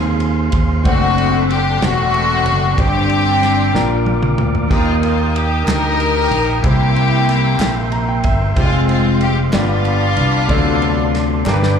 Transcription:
Already playing: fingered electric bass D#2, string section C4 F4 G#4, grand piano C4 F4 G#4, tonewheel organ G#4 C5 F5 C6
0.20 ride
0.52 fingered electric bass D#2, kick, ride
0.84 fingered electric bass F#1, grand piano A3 C4 D4 C5 F#5, string section A3 C4 F#4, tonewheel organ A4 D5 F#5, kick, ride
1.18 ride
1.50 string section G4, ride
1.82 fingered electric bass E1, string section A3 C4 F#4, snare, ride
2.14 ride
2.46 fingered electric bass F#1, ride
2.78 fingered electric bass G1, grand piano G2 D4 G4 C5, string section C4 D4 G4, tonewheel organ C5 D5 G5 D6, kick, ride
3.10 ride
3.43 snare, ride
3.73 fingered electric bass A#1, grand piano A#2 D4 F4 A#4, tonewheel organ A#4 F5, snare
4.06 high tom
4.23 mid tom
4.38 fingered electric bass D2, mid tom
4.55 floor tom
4.69 fingered electric bass D#2, grand piano D#3 D#4 G4 A#4, string section A#3 F4, tonewheel organ D#5 G5 D#6, kick, splash
5.03 string section F4, ride
5.36 string section G4, ride
5.67 fingered electric bass D2, string section D#4 G4 A#4, snare, clap, ride
6.00 ride
6.31 fingered electric bass A#1, ride
6.63 fingered electric bass C2, grand piano C3 A#3 C4 E4 G4 C5, string section A#3 E4 G4, tonewheel organ E5 C6, kick, ride
6.96 ride
7.29 snare, ride
7.60 fingered electric bass A#1, snare, clap, ride
7.92 grand piano A#5, ride
8.08 grand piano G5
8.24 fingered electric bass G1, grand piano E5, kick, ride
8.56 fingered electric bass F1, tonewheel organ G#3 C5 F5, string section G#3 C4 F4, grand piano C4 F4 G4, kick, ride
8.65 grand piano G#3
8.89 string section F4, ride
9.21 string section G4, ride
9.52 fingered electric bass G1, grand piano G2 A#3 D4 F4 G4 D5, string section B3 D4 F4, tonewheel organ G4 D5 B5, snare, clap, ride
9.59 grand piano B3
9.85 ride
10.16 fingered electric bass C2, ride
10.48 fingered electric bass D2, grand piano C3 D3 F#3 D4 A4 D5, tonewheel organ A4 C6, kick, ride
10.82 ride
11.15 snare, ride
11.45 fingered electric bass G1, grand piano G2 D4 G4 A#4, tonewheel organ B4 G5 D6, snare, clap
11.54 grand piano B4
11.63 snare

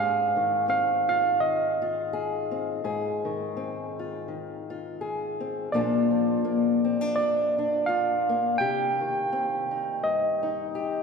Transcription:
Already playing: steel-string acoustic guitar G#2 D#3 C4 G#4, tine electric piano F5
0.36 steel-string acoustic guitar D#3
0.68 steel-string acoustic guitar C4, tine electric piano F5
1.09 steel-string acoustic guitar F4, tine electric piano F5
1.40 steel-string acoustic guitar D#3, tine electric piano D#5
1.82 steel-string acoustic guitar F4
2.13 steel-string acoustic guitar G#4
2.51 steel-string acoustic guitar C4
2.84 steel-string acoustic guitar G#2 G#4
3.25 steel-string acoustic guitar D#3
3.57 steel-string acoustic guitar C4
3.99 steel-string acoustic guitar F4
4.28 steel-string acoustic guitar D#3
4.70 steel-string acoustic guitar F4
5.01 steel-string acoustic guitar G#4
5.40 steel-string acoustic guitar C4
5.72 steel-string acoustic guitar A#2 F3 A#3 D4 F4, tine electric piano D5
6.11 steel-string acoustic guitar F3
6.45 steel-string acoustic guitar A#3
6.84 steel-string acoustic guitar C4
7.01 steel-string acoustic guitar D4
7.16 steel-string acoustic guitar F2, tine electric piano D5
7.58 steel-string acoustic guitar D4
7.86 steel-string acoustic guitar F4, tine electric piano F5
8.29 steel-string acoustic guitar A#3
8.58 steel-string acoustic guitar C3 G4, tine electric piano G5
9.01 steel-string acoustic guitar D#3
9.32 steel-string acoustic guitar C4
9.71 steel-string acoustic guitar D#4
10.03 steel-string acoustic guitar G2, tine electric piano D#5
10.43 steel-string acoustic guitar D#4
10.75 steel-string acoustic guitar G4

